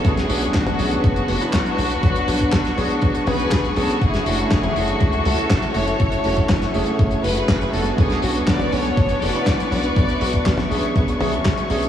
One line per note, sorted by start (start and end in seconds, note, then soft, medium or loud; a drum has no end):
0.00 0.27 B3 medium
0.00 0.27 C#4 medium
0.00 0.27 D4 medium
0.00 0.27 F#4 medium
0.00 7.94 F#5 medium
0.05 0.23 B1 loud
0.05 0.54 D4 medium
0.05 0.54 G#4 medium
0.05 3.97 B4 medium
0.05 7.94 C#6 medium
0.05 kick loud
0.05 closed hi-hat medium
0.17 snare soft
0.17 closed hi-hat medium
0.29 0.48 B1 medium
0.29 0.76 B3 medium
0.29 0.76 C#4 medium
0.29 0.76 D4 medium
0.29 0.76 F#4 loud
0.29 open hi-hat loud
0.43 closed hi-hat medium
0.54 0.73 B1 loud
0.54 1.04 D4 medium
0.54 1.03 F#4 loud
0.54 kick loud
0.54 snare loud
0.54 clap medium
0.54 closed hi-hat medium
0.67 closed hi-hat medium
0.67 high tom medium
0.79 0.97 B1 medium
0.79 1.26 B3 medium
0.79 1.26 C#4 medium
0.79 1.26 D4 medium
0.79 1.26 G#4 loud
0.79 open hi-hat loud
0.91 closed hi-hat medium
1.04 1.22 F#1 medium
1.04 3.24 D4 medium
1.04 3.23 F#4 loud
1.04 kick loud
1.04 closed hi-hat medium
1.16 closed hi-hat medium
1.28 1.38 F#1 loud
1.28 1.39 B3 medium
1.28 1.39 C#4 medium
1.28 1.39 D4 medium
1.28 1.39 F#4 medium
1.28 open hi-hat loud
1.41 1.75 B3 medium
1.41 1.75 D4 medium
1.41 1.75 E4 medium
1.41 1.75 C#5 medium
1.41 closed hi-hat medium
1.53 1.63 B1 loud
1.53 kick loud
1.53 snare loud
1.53 clap loud
1.53 closed hi-hat medium
1.66 closed hi-hat medium
1.78 1.97 B1 medium
1.78 2.25 B3 medium
1.78 2.25 D4 medium
1.78 2.25 F#4 loud
1.78 2.25 C#5 medium
1.78 open hi-hat loud
1.91 closed hi-hat medium
2.03 2.21 B1 loud
2.03 kick loud
2.03 closed hi-hat medium
2.16 closed hi-hat medium
2.28 2.46 B1 medium
2.28 2.75 B3 medium
2.28 2.75 D4 medium
2.28 2.75 F#4 loud
2.28 2.75 C#5 medium
2.28 open hi-hat loud
2.40 kick medium
2.40 closed hi-hat medium
2.52 2.71 B1 medium
2.52 kick loud
2.52 snare loud
2.52 clap loud
2.52 closed hi-hat medium
2.65 snare soft
2.65 closed hi-hat medium
2.77 2.87 B1 medium
2.77 3.24 B3 medium
2.77 3.24 D4 medium
2.77 3.24 G#4 medium
2.77 3.24 C#5 medium
2.77 open hi-hat medium
2.90 closed hi-hat medium
3.02 3.12 B1 loud
3.02 kick loud
3.02 closed hi-hat medium
3.15 closed hi-hat medium
3.27 3.45 B1 loud
3.27 3.38 B3 medium
3.27 3.38 C#4 medium
3.27 3.38 D4 medium
3.27 3.38 G#4 loud
3.27 3.74 G#4 medium
3.27 3.73 B4 loud
3.27 open hi-hat loud
3.27 high tom medium
3.39 3.58 B3 medium
3.39 3.58 C#4 medium
3.39 3.58 D4 medium
3.39 3.58 F#4 medium
3.39 closed hi-hat medium
3.51 3.70 B1 medium
3.51 kick loud
3.51 snare loud
3.51 clap loud
3.51 closed hi-hat medium
3.64 closed hi-hat medium
3.76 3.86 B1 loud
3.76 3.95 B3 loud
3.76 3.95 C#4 medium
3.76 3.95 D4 medium
3.76 4.02 F#4 medium
3.76 3.95 G#4 loud
3.76 4.02 A4 medium
3.76 open hi-hat loud
3.90 closed hi-hat medium
4.01 4.20 F#1 loud
4.01 7.94 A3 medium
4.01 4.25 E4 medium
4.01 4.25 G#4 loud
4.01 7.94 E5 medium
4.01 kick loud
4.01 closed hi-hat medium
4.14 snare soft
4.14 closed hi-hat medium
4.26 4.45 F#1 medium
4.26 4.73 A3 medium
4.26 4.73 C#4 medium
4.26 4.52 D4 medium
4.26 4.73 E4 medium
4.26 4.73 F#4 loud
4.26 4.51 F#4 medium
4.26 open hi-hat loud
4.39 closed hi-hat medium
4.51 4.69 F#1 loud
4.51 4.76 E4 medium
4.51 4.76 G#4 loud
4.51 kick loud
4.51 snare loud
4.51 clap loud
4.51 closed hi-hat medium
4.63 closed hi-hat medium
4.63 high tom medium
4.76 4.94 F#1 medium
4.76 5.23 A3 medium
4.76 5.26 D4 medium
4.76 5.23 E4 medium
4.76 5.25 F#4 loud
4.76 5.23 G#4 loud
4.76 5.23 C#5 medium
4.76 open hi-hat loud
4.88 closed hi-hat medium
5.00 5.19 C#2 medium
5.00 kick loud
5.00 closed hi-hat medium
5.12 closed hi-hat medium
5.25 5.35 C#2 loud
5.25 5.36 A3 medium
5.25 5.36 C#4 medium
5.25 5.36 E4 medium
5.25 5.36 F#4 medium
5.25 5.75 F#4 medium
5.25 5.75 A4 loud
5.25 open hi-hat loud
5.38 5.72 A3 medium
5.38 5.72 C#4 medium
5.38 5.72 E4 medium
5.38 5.72 F#4 medium
5.38 closed hi-hat medium
5.50 5.59 F#1 medium
5.50 kick loud
5.50 snare loud
5.50 clap loud
5.50 closed hi-hat medium
5.62 closed hi-hat medium
5.74 5.93 F#1 medium
5.74 6.22 A3 medium
5.74 6.22 C#4 medium
5.74 6.22 E4 medium
5.74 6.22 F#4 medium
5.74 6.75 A4 medium
5.74 6.74 C#5 loud
5.74 open hi-hat loud
5.87 closed hi-hat medium
6.00 6.18 F#1 loud
6.00 kick loud
6.00 closed hi-hat medium
6.12 closed hi-hat medium
6.24 6.43 F#1 medium
6.24 6.71 A3 medium
6.24 6.71 C#4 medium
6.24 6.71 E4 medium
6.24 6.71 F#4 loud
6.24 open hi-hat medium
6.37 kick medium
6.37 closed hi-hat medium
6.49 6.68 F#1 loud
6.49 kick loud
6.49 snare loud
6.49 clap loud
6.49 closed hi-hat medium
6.62 snare soft
6.62 closed hi-hat medium
6.74 6.83 F#1 medium
6.74 7.21 A3 medium
6.74 7.21 C#4 medium
6.74 7.21 E4 medium
6.74 7.21 G#4 loud
6.74 open hi-hat medium
6.86 closed hi-hat medium
6.99 7.17 F#1 loud
6.99 kick loud
6.99 closed hi-hat medium
7.11 closed hi-hat medium
7.24 7.42 F#1 loud
7.24 7.34 A3 medium
7.24 7.34 C#4 medium
7.24 7.34 E4 medium
7.24 7.34 F#4 medium
7.24 7.70 G#4 medium
7.24 7.70 B4 loud
7.24 open hi-hat loud
7.36 7.70 A3 medium
7.36 7.70 C#4 medium
7.36 7.70 E4 medium
7.36 7.70 F#4 medium
7.36 closed hi-hat medium
7.48 7.67 F#1 loud
7.48 kick loud
7.48 snare loud
7.48 clap loud
7.48 closed hi-hat medium
7.61 closed hi-hat medium
7.73 7.92 F#1 medium
7.73 8.20 B3 medium
7.73 8.20 C#4 medium
7.73 8.20 D4 medium
7.73 8.20 F#4 medium
7.73 7.98 F#4 medium
7.73 7.98 A4 loud
7.73 open hi-hat medium
7.86 closed hi-hat medium
7.98 8.17 B1 loud
7.98 8.21 D4 medium
7.98 8.21 G#4 loud
7.98 11.89 B4 medium
7.98 9.95 F#5 medium
7.98 11.89 C#6 medium
7.98 kick loud
7.98 closed hi-hat medium
8.10 snare soft
8.10 closed hi-hat medium
8.22 8.41 B1 medium
8.22 8.70 B3 medium
8.22 8.70 C#4 medium
8.22 8.70 D4 medium
8.22 8.48 D4 medium
8.22 8.48 F#4 medium
8.22 8.70 F#4 loud
8.22 open hi-hat loud
8.36 closed hi-hat medium
8.47 8.66 B1 loud
8.47 8.73 B4 medium
8.47 8.73 D5 loud
8.47 kick loud
8.47 snare loud
8.47 clap loud
8.47 closed hi-hat medium
8.60 closed hi-hat medium
8.60 high tom medium
8.72 8.91 B1 medium
8.72 9.19 B3 medium
8.72 9.19 C#4 medium
8.72 9.19 D4 medium
8.72 9.23 A4 medium
8.72 9.22 C#5 loud
8.72 9.19 G#5 loud
8.72 open hi-hat medium
8.85 closed hi-hat soft
8.97 9.16 F#1 medium
8.97 kick loud
8.97 closed hi-hat medium
9.09 closed hi-hat medium
9.22 9.31 F#1 medium
9.22 9.33 B3 medium
9.22 9.33 C#4 medium
9.22 9.33 D4 medium
9.22 9.33 F#4 medium
9.22 9.71 B4 medium
9.22 9.70 D5 loud
9.22 open hi-hat loud
9.34 9.69 B3 medium
9.34 9.69 D4 medium
9.34 9.69 E4 medium
9.34 closed hi-hat medium
9.46 9.56 B1 loud
9.46 kick loud
9.46 snare loud
9.46 clap loud
9.46 closed hi-hat medium
9.60 closed hi-hat medium
9.72 9.90 B1 loud
9.72 10.18 B3 medium
9.72 10.18 D4 medium
9.72 10.18 F#4 medium
9.72 10.67 B4 medium
9.72 10.67 D5 loud
9.72 open hi-hat loud
9.83 closed hi-hat medium
9.96 10.15 B1 loud
9.96 11.89 E5 medium
9.96 kick loud
9.96 closed hi-hat medium
10.09 closed hi-hat medium
10.21 10.39 B1 medium
10.21 10.68 B3 medium
10.21 10.68 D4 medium
10.21 10.68 F#4 loud
10.21 open hi-hat loud
10.33 kick medium
10.33 closed hi-hat medium
10.46 10.64 B1 medium
10.46 kick loud
10.46 snare loud
10.46 clap medium
10.46 closed hi-hat medium
10.58 snare soft
10.58 closed hi-hat medium
10.58 high tom medium
10.71 10.80 B1 medium
10.71 11.17 B3 medium
10.71 11.17 C#4 medium
10.71 11.17 D4 medium
10.71 11.17 G#4 loud
10.71 open hi-hat medium
10.83 closed hi-hat medium
10.96 11.14 B1 loud
10.96 kick loud
10.96 closed hi-hat medium
11.08 closed hi-hat medium
11.20 11.39 B1 loud
11.20 11.31 B3 medium
11.20 11.31 C#4 medium
11.20 11.31 D4 medium
11.20 11.31 G#4 loud
11.20 open hi-hat medium
11.20 high tom medium
11.32 11.52 B3 medium
11.32 11.51 C#4 medium
11.32 11.51 D4 medium
11.32 11.51 F#4 medium
11.32 closed hi-hat medium
11.45 11.54 B1 medium
11.45 kick loud
11.45 snare loud
11.45 clap loud
11.45 closed hi-hat medium
11.58 closed hi-hat medium
11.70 11.88 B1 loud
11.70 11.89 B3 medium
11.70 11.89 C#4 medium
11.70 11.89 D4 medium
11.70 11.89 G#4 loud
11.70 open hi-hat medium
11.82 closed hi-hat medium